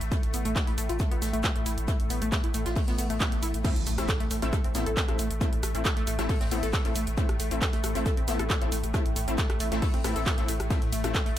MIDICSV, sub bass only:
0, 0, Header, 1, 2, 480
1, 0, Start_track
1, 0, Key_signature, 0, "minor"
1, 0, Tempo, 441176
1, 127, Time_signature, 4, 2, 24, 8
1, 12389, End_track
2, 0, Start_track
2, 0, Title_t, "Sub bass"
2, 0, Program_c, 0, 38
2, 11, Note_on_c, 0, 33, 85
2, 124, Note_off_c, 0, 33, 0
2, 252, Note_on_c, 0, 33, 74
2, 360, Note_off_c, 0, 33, 0
2, 366, Note_on_c, 0, 33, 93
2, 485, Note_off_c, 0, 33, 0
2, 492, Note_on_c, 0, 33, 84
2, 604, Note_off_c, 0, 33, 0
2, 732, Note_on_c, 0, 33, 79
2, 839, Note_off_c, 0, 33, 0
2, 846, Note_on_c, 0, 33, 106
2, 966, Note_off_c, 0, 33, 0
2, 972, Note_on_c, 0, 33, 81
2, 1085, Note_off_c, 0, 33, 0
2, 1212, Note_on_c, 0, 33, 73
2, 1320, Note_off_c, 0, 33, 0
2, 1326, Note_on_c, 0, 33, 98
2, 1445, Note_off_c, 0, 33, 0
2, 1451, Note_on_c, 0, 33, 78
2, 1564, Note_off_c, 0, 33, 0
2, 1691, Note_on_c, 0, 33, 84
2, 1799, Note_off_c, 0, 33, 0
2, 1805, Note_on_c, 0, 33, 99
2, 1925, Note_off_c, 0, 33, 0
2, 1931, Note_on_c, 0, 33, 83
2, 2044, Note_off_c, 0, 33, 0
2, 2172, Note_on_c, 0, 33, 72
2, 2279, Note_off_c, 0, 33, 0
2, 2285, Note_on_c, 0, 33, 94
2, 2404, Note_off_c, 0, 33, 0
2, 2411, Note_on_c, 0, 33, 77
2, 2524, Note_off_c, 0, 33, 0
2, 2651, Note_on_c, 0, 33, 81
2, 2759, Note_off_c, 0, 33, 0
2, 2766, Note_on_c, 0, 33, 107
2, 2885, Note_off_c, 0, 33, 0
2, 2892, Note_on_c, 0, 33, 83
2, 3004, Note_off_c, 0, 33, 0
2, 3132, Note_on_c, 0, 33, 74
2, 3241, Note_off_c, 0, 33, 0
2, 3247, Note_on_c, 0, 33, 104
2, 3365, Note_off_c, 0, 33, 0
2, 3372, Note_on_c, 0, 33, 77
2, 3484, Note_off_c, 0, 33, 0
2, 3612, Note_on_c, 0, 33, 83
2, 3720, Note_off_c, 0, 33, 0
2, 3727, Note_on_c, 0, 33, 100
2, 3844, Note_off_c, 0, 33, 0
2, 3851, Note_on_c, 0, 33, 82
2, 3964, Note_off_c, 0, 33, 0
2, 4093, Note_on_c, 0, 33, 75
2, 4200, Note_off_c, 0, 33, 0
2, 4206, Note_on_c, 0, 33, 90
2, 4325, Note_off_c, 0, 33, 0
2, 4331, Note_on_c, 0, 33, 78
2, 4444, Note_off_c, 0, 33, 0
2, 4571, Note_on_c, 0, 33, 78
2, 4679, Note_off_c, 0, 33, 0
2, 4685, Note_on_c, 0, 33, 103
2, 4805, Note_off_c, 0, 33, 0
2, 4811, Note_on_c, 0, 33, 85
2, 4924, Note_off_c, 0, 33, 0
2, 5051, Note_on_c, 0, 33, 74
2, 5159, Note_off_c, 0, 33, 0
2, 5166, Note_on_c, 0, 33, 101
2, 5286, Note_off_c, 0, 33, 0
2, 5292, Note_on_c, 0, 33, 77
2, 5405, Note_off_c, 0, 33, 0
2, 5533, Note_on_c, 0, 33, 80
2, 5641, Note_off_c, 0, 33, 0
2, 5647, Note_on_c, 0, 33, 101
2, 5767, Note_off_c, 0, 33, 0
2, 5773, Note_on_c, 0, 33, 81
2, 5885, Note_off_c, 0, 33, 0
2, 6013, Note_on_c, 0, 33, 74
2, 6120, Note_off_c, 0, 33, 0
2, 6127, Note_on_c, 0, 33, 100
2, 6246, Note_off_c, 0, 33, 0
2, 6252, Note_on_c, 0, 33, 81
2, 6365, Note_off_c, 0, 33, 0
2, 6492, Note_on_c, 0, 33, 79
2, 6600, Note_off_c, 0, 33, 0
2, 6607, Note_on_c, 0, 33, 108
2, 6725, Note_off_c, 0, 33, 0
2, 6731, Note_on_c, 0, 33, 83
2, 6844, Note_off_c, 0, 33, 0
2, 6972, Note_on_c, 0, 33, 74
2, 7080, Note_off_c, 0, 33, 0
2, 7086, Note_on_c, 0, 33, 104
2, 7206, Note_off_c, 0, 33, 0
2, 7212, Note_on_c, 0, 33, 80
2, 7324, Note_off_c, 0, 33, 0
2, 7451, Note_on_c, 0, 33, 79
2, 7559, Note_off_c, 0, 33, 0
2, 7566, Note_on_c, 0, 33, 104
2, 7686, Note_off_c, 0, 33, 0
2, 7693, Note_on_c, 0, 33, 86
2, 7805, Note_off_c, 0, 33, 0
2, 7932, Note_on_c, 0, 33, 76
2, 8039, Note_off_c, 0, 33, 0
2, 8045, Note_on_c, 0, 33, 97
2, 8165, Note_off_c, 0, 33, 0
2, 8171, Note_on_c, 0, 33, 79
2, 8284, Note_off_c, 0, 33, 0
2, 8412, Note_on_c, 0, 33, 82
2, 8520, Note_off_c, 0, 33, 0
2, 8527, Note_on_c, 0, 33, 104
2, 8646, Note_off_c, 0, 33, 0
2, 8652, Note_on_c, 0, 33, 85
2, 8765, Note_off_c, 0, 33, 0
2, 8892, Note_on_c, 0, 33, 76
2, 9000, Note_off_c, 0, 33, 0
2, 9007, Note_on_c, 0, 33, 101
2, 9127, Note_off_c, 0, 33, 0
2, 9133, Note_on_c, 0, 33, 78
2, 9245, Note_off_c, 0, 33, 0
2, 9373, Note_on_c, 0, 33, 81
2, 9481, Note_off_c, 0, 33, 0
2, 9488, Note_on_c, 0, 33, 102
2, 9606, Note_off_c, 0, 33, 0
2, 9613, Note_on_c, 0, 33, 83
2, 9725, Note_off_c, 0, 33, 0
2, 9853, Note_on_c, 0, 33, 74
2, 9960, Note_off_c, 0, 33, 0
2, 9967, Note_on_c, 0, 33, 92
2, 10085, Note_off_c, 0, 33, 0
2, 10092, Note_on_c, 0, 33, 79
2, 10204, Note_off_c, 0, 33, 0
2, 10332, Note_on_c, 0, 33, 80
2, 10440, Note_off_c, 0, 33, 0
2, 10446, Note_on_c, 0, 33, 106
2, 10565, Note_off_c, 0, 33, 0
2, 10572, Note_on_c, 0, 33, 87
2, 10684, Note_off_c, 0, 33, 0
2, 10812, Note_on_c, 0, 33, 77
2, 10920, Note_off_c, 0, 33, 0
2, 10926, Note_on_c, 0, 33, 103
2, 11045, Note_off_c, 0, 33, 0
2, 11052, Note_on_c, 0, 33, 79
2, 11164, Note_off_c, 0, 33, 0
2, 11292, Note_on_c, 0, 33, 78
2, 11401, Note_off_c, 0, 33, 0
2, 11407, Note_on_c, 0, 33, 99
2, 11525, Note_off_c, 0, 33, 0
2, 11531, Note_on_c, 0, 33, 84
2, 11644, Note_off_c, 0, 33, 0
2, 11772, Note_on_c, 0, 33, 75
2, 11879, Note_off_c, 0, 33, 0
2, 11886, Note_on_c, 0, 33, 92
2, 12005, Note_off_c, 0, 33, 0
2, 12011, Note_on_c, 0, 33, 79
2, 12124, Note_off_c, 0, 33, 0
2, 12251, Note_on_c, 0, 33, 79
2, 12359, Note_off_c, 0, 33, 0
2, 12389, End_track
0, 0, End_of_file